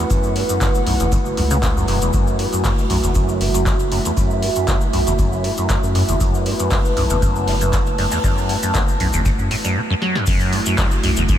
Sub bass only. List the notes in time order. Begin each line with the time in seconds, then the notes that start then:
0.61 F#1
0.86 B1
1.00 F#1
1.37 C#2
1.88 E1
2.14 F#1
2.64 F#1
2.90 B1
3.04 F#1
3.41 F#1
4.68 F#1
4.93 B1
5.07 F#1
5.83 F#2
6.09 F#1
6.20 F#1
6.71 F#1
6.97 B1
7.10 F#1
7.48 F#1
8.75 F#1
9.00 B1
9.14 F#1
9.39 F#2
10.27 F#1
10.78 F#1
11.03 B1
11.17 F#1